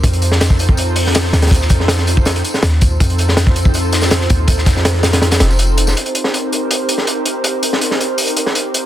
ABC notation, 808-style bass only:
X:1
M:4/4
L:1/8
Q:1/4=162
K:Cdor
V:1 name="808-style bass" clef=bass
F,,6- F,, E,,- | E,, F,,4 z E,,2 | F,,6- F,, E,,- | E,, F,,4 F,,,3 |
z8 | z8 |]